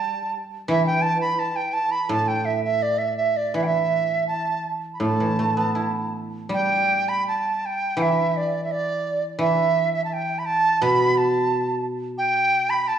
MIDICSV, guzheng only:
0, 0, Header, 1, 2, 480
1, 0, Start_track
1, 0, Tempo, 707547
1, 477, Time_signature, 4, 2, 24, 8
1, 1920, Tempo, 738007
1, 5280, Tempo, 707547
1, 6720, Tempo, 691244
1, 8712, End_track
2, 0, Start_track
2, 0, Title_t, "Guzheng"
2, 0, Program_c, 0, 107
2, 0, Note_on_c, 0, 55, 67
2, 464, Note_on_c, 0, 52, 66
2, 949, Note_off_c, 0, 55, 0
2, 1419, Note_on_c, 0, 45, 57
2, 1912, Note_off_c, 0, 52, 0
2, 2383, Note_on_c, 0, 52, 51
2, 2861, Note_off_c, 0, 45, 0
2, 3329, Note_on_c, 0, 45, 64
2, 3454, Note_off_c, 0, 52, 0
2, 3462, Note_on_c, 0, 52, 34
2, 3583, Note_on_c, 0, 57, 37
2, 3701, Note_on_c, 0, 59, 38
2, 3819, Note_on_c, 0, 64, 40
2, 4302, Note_on_c, 0, 55, 52
2, 4445, Note_off_c, 0, 52, 0
2, 4564, Note_off_c, 0, 57, 0
2, 4680, Note_off_c, 0, 59, 0
2, 4796, Note_off_c, 0, 64, 0
2, 4798, Note_off_c, 0, 45, 0
2, 5262, Note_on_c, 0, 52, 68
2, 5750, Note_off_c, 0, 55, 0
2, 6215, Note_off_c, 0, 52, 0
2, 6223, Note_on_c, 0, 52, 60
2, 7203, Note_on_c, 0, 47, 70
2, 7673, Note_off_c, 0, 52, 0
2, 8639, Note_off_c, 0, 47, 0
2, 8712, End_track
0, 0, End_of_file